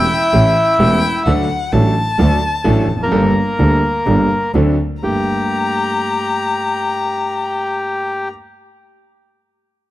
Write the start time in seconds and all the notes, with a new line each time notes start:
Already playing: E4 E5 G5
0.33 A1 A2 E3 A3 C#4 G4
0.79 E1 E2 E3 A3 C#4 G4 G5
1.26 D2 D3 F#3 A3 D4 A4 F#5
1.72 A1 A2 F#3 A3 D4 A4 A5
2.18 D2 D3 F#3 A3 D4 A4
2.64 A1 A2 F#3 A3 D4 A4
2.89 F1
2.96 E2
3.01 F2 A#3 A#4
3.06 F#2
3.12 G1 G2 G3 A#3 D4 A4
3.59 D2 D3 G3 A#3 D4 A4
4.06 G1 G2 G3 A#3 D4 A4
4.54 D2 D3 F#3 C4 D4 A4
5.01 G1 G2 A3 A#3 G4 A#5